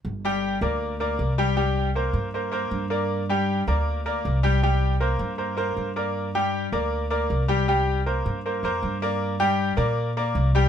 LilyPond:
<<
  \new Staff \with { instrumentName = "Grand piano" } { \time 4/4 \key c \dorian \tempo 4 = 157 r8 <g g' g''>4 <bes bes' d''>4 <bes bes' d''>4 <g g' g''>8 | <g g' g''>4 <bes bes' c''>4 <bes bes' c''>8 <bes bes' c''>4 <bes bes' d''>8~ | <bes bes' d''>8 <g g' g''>4 <bes bes' d''>4 <bes bes' d''>4 <g g' g''>8 | <g g' g''>4 <bes bes' c''>4 <bes bes' c''>8 <bes bes' c''>4 <bes bes' d''>8~ |
<bes bes' d''>8 <g g' g''>4 <bes bes' d''>4 <bes bes' d''>4 <g g' g''>8 | <g g' g''>4 <bes bes' c''>4 <bes bes' c''>8 <bes bes' c''>4 <bes bes' d''>8~ | <bes bes' d''>8 <g g' g''>4 <bes bes' d''>4 <bes bes' d''>4 <g g' g''>8 | }
  \new Staff \with { instrumentName = "Upright bass" } { \clef bass \time 4/4 \key c \dorian g,,4. d,4. c,4~ | c,4. g,4. g,4~ | g,4. d,4. c,4~ | c,4. g,4. g,4~ |
g,4. d,4. c,4~ | c,4. g,4 f,8 g,4~ | g,4. bes,4. c,4 | }
>>